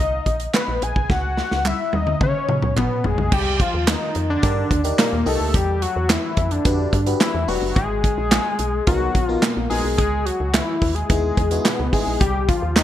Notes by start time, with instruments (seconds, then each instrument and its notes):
Already playing: analog synth lead D#5
0.00 fm bass C2
0.26 fm bass A#1, kick, closed hi-hat
0.40 closed hi-hat
0.54 analog synth lead B4, snare, clap, closed hi-hat
0.68 fm bass A#1
0.82 fm bass A#1, analog synth lead G#5, closed hi-hat
0.96 fm bass B1, kick
1.10 fm bass C#2, analog synth lead F#5, kick, snare
1.37 snare
1.51 fm bass C#2, snare
1.65 analog synth lead E5, clap, high tom
1.93 fm bass D#2, analog synth lead D#5, high tom
2.07 mid tom
2.21 fm bass C#3, analog synth lead C#5, kick, mid tom
2.49 fm bass C#3, mid tom
2.62 fm bass C#2, mid tom
2.76 fm bass G#1, analog synth lead B3, clap, mid tom
3.04 fm bass G#1, analog synth lead G#4, floor tom
3.18 fm bass A#1, floor tom
3.32 fm bass C2, analog synth lead G4, kick, crash
3.60 analog synth lead F4, kick, closed hi-hat
3.74 fm bass D#2
3.88 analog synth lead D#4, snare, clap, closed hi-hat
4.15 fm bass F2, closed hi-hat
4.30 analog synth lead D4
4.42 fm bass G2, fm electric piano D#3 G4 A#4 D5, kick, closed hi-hat
4.71 fm bass D#2, kick, closed hi-hat
4.84 fm electric piano D#4 G4 A#4 D5, closed hi-hat
4.99 analog synth lead A#3, snare, clap, closed hi-hat
5.13 fm bass D#2
5.26 fm bass C2, fm electric piano D#4 G4 A#4 D#5, analog synth lead A4, open hi-hat
5.40 fm bass D2
5.54 fm bass E2, analog synth lead G4, kick, closed hi-hat
5.82 analog synth lead F#4, closed hi-hat
5.96 fm bass E2
6.10 analog synth lead E4, snare, clap, closed hi-hat
6.37 fm bass F2, kick, closed hi-hat
6.51 analog synth lead D4, closed hi-hat
6.65 fm bass F2, fm electric piano D4 F#4 G4 B4, kick, closed hi-hat
6.93 fm bass G2, kick, closed hi-hat
7.06 fm electric piano D4 F#4 G4 B4, closed hi-hat
7.20 analog synth lead E4, snare, clap, closed hi-hat
7.34 fm bass E2
7.48 fm bass E1, fm electric piano D4 F#4 G4 B4, analog synth lead F#4, open hi-hat
7.62 fm bass F#1
7.76 fm bass G#1, analog synth lead G#4, kick, closed hi-hat
8.04 kick, closed hi-hat
8.18 fm bass A#1
8.32 snare, clap, closed hi-hat
8.59 fm bass B1, closed hi-hat
8.87 fm bass C2, fm electric piano B3 D#4 F#4 A#4, analog synth lead F#4, kick, closed hi-hat
9.15 fm bass A#1, kick, closed hi-hat
9.25 fm electric piano B3 D#4 F#4, analog synth lead F4
9.29 fm electric piano A#4
9.42 analog synth lead A#3, snare, clap, closed hi-hat
9.57 fm bass A#1
9.70 fm bass A#1, fm electric piano B3 D#4 F#4 A#4, analog synth lead G#4, open hi-hat
9.84 fm bass B1
9.98 fm bass C#2, analog synth lead G#4, kick, closed hi-hat
10.26 analog synth lead F#4, closed hi-hat
10.40 fm bass C#2
10.53 analog synth lead E4, snare, clap, closed hi-hat
10.82 fm bass D#2, kick, open hi-hat
10.95 analog synth lead G#4, closed hi-hat
11.09 fm bass D#2, fm electric piano B3 D#4 E4 G#4, kick, closed hi-hat
11.37 fm bass E2, kick, closed hi-hat
11.51 fm electric piano B3 D#4 E4 F#4, closed hi-hat
11.65 analog synth lead B3, snare, clap, closed hi-hat
11.80 fm bass C#2
11.93 fm bass G#1, fm electric piano B3 D#4 E4 G#4, analog synth lead G#4, kick, open hi-hat
12.07 fm bass A#1
12.20 fm bass C2, analog synth lead G4, kick, closed hi-hat
12.49 analog synth lead F4, kick, closed hi-hat
12.62 fm bass D#2
12.76 analog synth lead D#4, snare, clap, closed hi-hat